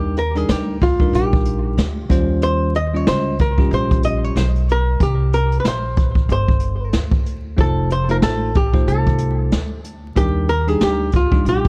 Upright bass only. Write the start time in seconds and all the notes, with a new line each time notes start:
Already playing: D#2
0.49 D2
1.13 A#1
1.77 D2
2.09 D#2
3.07 C#2
3.71 A#1
4.35 B1
5.00 C2
5.64 A#1
6.29 G1
6.93 D2
7.58 F1
8.22 A1
8.87 C2
9.52 D2
10.16 D#2
10.81 D2
11.45 A#1